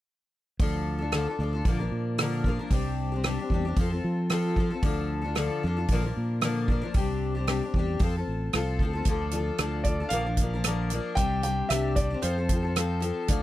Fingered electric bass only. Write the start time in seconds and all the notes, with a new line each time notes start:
0.60 D2
1.39 D2
1.65 A#1
1.91 A#2
2.71 C2
3.50 E2
3.77 F2
4.04 F3
4.82 D2
5.64 F2
5.89 A#1
6.17 A#2
6.95 C2
7.74 E2
8.01 F2
8.28 A1
8.54 C2
8.79 D2
9.05 D2
9.59 D2
10.11 A#1
11.17 C2
11.70 C2
12.23 F2
13.29 D2